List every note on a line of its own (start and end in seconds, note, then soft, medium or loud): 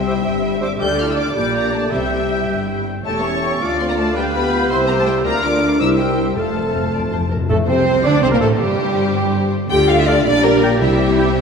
0.00 0.16 C2 medium
0.00 0.17 C3 medium
0.00 0.22 C3 medium
0.00 0.61 G3 medium
0.00 0.77 C5 medium
0.00 0.80 E5 medium
0.00 0.60 G5 medium
0.06 0.25 E4 medium
0.06 0.14 G4 medium
0.06 0.14 C5 medium
0.06 0.15 E6 medium
0.24 0.71 G1 medium
0.24 0.71 G2 medium
0.24 0.43 C4 medium
0.43 0.62 G3 medium
0.61 0.80 C4 medium
0.61 0.80 D4 medium
0.61 0.68 G4 medium
0.61 0.68 C5 medium
0.61 0.70 D6 medium
0.61 0.70 E6 medium
0.79 1.26 D2 medium
0.79 1.26 D3 medium
0.79 0.97 A3 medium
0.79 0.88 G4 medium
0.79 1.31 A4 medium
0.79 1.34 A4 medium
0.79 1.31 D5 medium
0.79 1.34 D5 medium
0.79 1.31 F6 medium
0.79 0.98 G6 loud
0.98 1.17 D4 medium
0.98 1.04 F4 medium
0.98 1.09 F6 medium
1.06 1.11 E4 medium
1.06 1.13 E6 medium
1.15 1.24 D4 medium
1.15 1.36 F4 medium
1.15 1.35 D6 medium
1.34 1.82 A#1 medium
1.34 1.82 A#2 medium
1.34 1.53 G3 medium
1.34 1.54 D4 medium
1.34 1.90 G4 medium
1.34 1.92 D5 medium
1.34 1.90 D5 medium
1.34 1.92 D5 medium
1.34 1.54 D6 medium
1.34 1.90 G6 medium
1.53 1.72 A#3 medium
1.53 1.73 A#3 medium
1.53 1.73 A#5 medium
1.73 1.91 A3 medium
1.73 1.92 D4 medium
1.73 1.92 A5 medium
1.91 2.38 C2 medium
1.91 2.39 C3 medium
1.91 2.44 C3 medium
1.91 2.09 G3 medium
1.91 2.84 G3 medium
1.91 2.84 G4 medium
1.91 2.86 E5 medium
1.91 2.77 E5 medium
1.91 2.84 G5 medium
1.91 2.84 G6 medium
2.10 2.29 C4 medium
2.30 2.48 E4 soft
2.47 2.95 G1 medium
2.47 2.95 G2 medium
2.47 2.67 G4 soft
2.67 2.86 E4 medium
2.87 3.05 C4 medium
3.04 3.57 E1 medium
3.04 3.57 E2 medium
3.04 3.22 A3 medium
3.04 3.63 G4 medium
3.04 3.23 G4 medium
3.04 3.57 C#5 medium
3.04 3.63 E5 medium
3.04 3.23 G5 medium
3.04 3.22 A5 medium
3.04 4.12 A6 medium
3.23 3.60 C#4 medium
3.23 3.43 A4 medium
3.23 3.43 A5 soft
3.23 3.61 C#6 medium
3.43 3.61 G4 medium
3.43 3.61 G5 soft
3.60 4.70 D2 medium
3.60 3.79 D4 medium
3.60 4.18 F4 medium
3.60 3.78 F4 medium
3.60 4.16 D5 medium
3.60 4.72 F5 medium
3.60 3.78 F5 medium
3.60 3.80 D6 medium
3.79 3.89 C4 medium
3.79 3.98 A4 medium
3.79 3.98 D5 medium
3.79 3.83 C6 medium
3.89 3.98 A#3 medium
3.89 3.93 A#5 medium
3.97 4.16 A3 medium
3.97 4.16 F4 medium
3.97 4.16 F5 medium
3.97 4.15 A5 medium
4.15 4.25 G3 medium
4.15 4.33 F4 medium
4.15 5.25 G4 medium
4.15 4.70 B4 medium
4.15 4.33 F5 medium
4.15 4.23 G5 loud
4.15 5.25 G6 medium
4.33 4.70 B3 medium
4.33 4.52 G4 medium
4.33 4.53 G5 medium
4.33 4.69 B5 medium
4.53 4.71 F4 medium
4.53 4.71 F5 medium
4.70 5.24 C2 medium
4.70 4.89 C4 medium
4.70 4.88 E4 medium
4.70 5.25 C5 medium
4.70 5.24 E5 medium
4.70 4.88 E5 medium
4.70 4.77 C6 medium
4.88 4.98 A#3 medium
4.88 5.08 G4 medium
4.88 5.08 G5 medium
4.88 4.92 A#5 loud
4.99 5.08 A3 medium
4.99 5.03 A5 medium
5.06 5.26 G3 medium
5.06 5.26 E4 medium
5.06 5.25 E5 medium
5.06 5.14 G5 medium
5.24 5.80 D2 medium
5.24 5.35 A#3 medium
5.24 5.79 F4 medium
5.24 5.76 A#4 medium
5.24 5.82 D5 medium
5.24 5.42 D5 medium
5.24 5.42 F5 medium
5.24 5.43 A#5 loud
5.24 5.75 F6 medium
5.44 5.80 D4 medium
5.44 5.62 A#4 medium
5.44 5.61 D5 medium
5.44 5.80 D6 loud
5.62 5.80 D5 soft
5.62 5.80 F5 medium
5.79 6.36 C2 medium
5.79 6.37 C2 medium
5.79 6.00 E4 medium
5.79 6.35 G4 medium
5.79 6.35 A#4 medium
5.79 6.36 C5 medium
5.79 5.98 C5 medium
5.79 5.98 E5 medium
5.79 6.35 E6 medium
5.79 5.88 E6 loud
5.99 6.37 G3 medium
5.99 6.18 A#4 medium
5.99 6.36 G5 medium
5.99 6.18 G5 medium
6.19 6.36 C5 soft
6.19 6.37 E5 soft
6.36 7.31 F1 medium
6.36 7.31 F2 medium
6.36 6.43 F2 soft
6.36 7.31 A3 medium
6.36 7.29 A4 medium
6.36 7.21 A4 medium
6.36 7.29 C5 soft
6.36 6.54 C5 soft
6.36 6.55 F5 medium
6.36 7.29 A5 medium
6.36 7.31 F6 medium
6.45 6.51 F2 soft
6.52 6.59 F2 soft
6.52 6.75 A4 soft
6.52 6.75 A5 soft
6.60 6.67 F2 soft
6.68 6.75 F2 soft
6.74 6.81 F2 soft
6.74 6.93 C5 soft
6.74 6.93 F5 soft
6.83 6.89 F2 soft
6.90 6.97 F2 medium
6.90 7.01 D5 medium
6.98 7.05 F2 medium
7.06 7.13 F2 medium
7.12 7.20 F2 medium
7.12 7.19 C5 medium
7.21 7.28 F2 medium
7.29 7.35 F2 medium
7.29 7.39 A#4 medium
7.37 7.43 F2 medium
7.48 7.57 A1 medium
7.48 8.02 F2 medium
7.48 7.57 A2 medium
7.48 7.70 A3 medium
7.48 7.57 A3 medium
7.48 7.68 A3 medium
7.48 7.54 A4 medium
7.48 7.58 A4 medium
7.48 7.57 A4 medium
7.67 8.04 C2 medium
7.67 8.04 C3 medium
7.67 8.04 C4 medium
7.67 8.06 C4 medium
7.67 8.04 C5 medium
7.67 8.03 C5 medium
7.67 8.05 C5 medium
8.03 8.23 D2 medium
8.03 8.23 D3 medium
8.03 8.23 D4 loud
8.03 8.23 D4 medium
8.03 8.14 D4 medium
8.03 9.66 C5 medium
8.03 8.25 D5 medium
8.03 8.23 D5 loud
8.03 8.24 D5 medium
8.23 8.33 C2 medium
8.23 8.33 C3 medium
8.23 8.32 C4 medium
8.23 8.28 C4 medium
8.23 8.32 C5 medium
8.23 8.31 C5 medium
8.23 8.27 C5 loud
8.31 8.37 A#2 medium
8.31 8.37 A#3 medium
8.31 8.42 A#3 medium
8.31 8.38 A#3 medium
8.31 8.36 A#4 medium
8.31 8.41 A#4 medium
8.31 8.38 A#4 medium
8.40 8.60 A1 medium
8.40 8.60 A2 medium
8.40 8.60 A3 medium
8.40 8.51 A3 medium
8.40 8.49 A4 medium
8.40 8.60 A4 medium
8.40 8.49 A4 medium
8.59 9.50 G1 medium
8.59 9.50 G2 medium
8.59 9.12 C3 loud
8.59 9.50 G3 medium
8.59 9.52 G3 medium
8.59 9.45 G4 medium
8.59 9.50 G4 medium
9.69 10.22 D2 medium
9.69 10.22 D3 medium
9.69 10.22 A3 medium
9.69 10.22 F4 medium
9.69 9.88 G4 loud
9.69 10.79 D5 loud
9.69 9.75 G5 loud
9.69 9.87 G5 loud
9.88 9.98 F4 medium
9.88 9.97 F5 medium
9.88 9.98 F5 loud
9.98 10.08 E4 loud
9.98 10.07 E5 medium
9.98 10.08 E5 loud
10.06 10.26 D4 loud
10.06 10.14 A4 medium
10.06 10.12 D5 loud
10.06 10.25 D5 loud
10.06 10.14 F5 medium
10.25 10.81 A#1 medium
10.25 10.81 A#2 medium
10.25 10.79 G3 medium
10.25 10.44 D4 loud
10.25 10.80 G4 medium
10.25 10.32 D5 loud
10.25 10.44 D5 loud
10.43 10.82 A#3 medium
10.43 10.80 A#4 medium
10.43 10.81 A#4 loud
10.63 10.70 G4 medium
10.63 10.70 G5 medium
10.80 11.41 C2 medium
10.80 11.34 C3 loud
10.80 11.41 C3 medium
10.80 11.32 G3 medium
10.80 11.41 G3 medium
10.80 11.33 E4 medium
10.80 11.41 G4 medium
10.80 11.41 G4 loud
10.80 11.41 E5 medium
11.18 11.25 E4 medium
11.18 11.26 G5 medium
11.38 11.41 C4 loud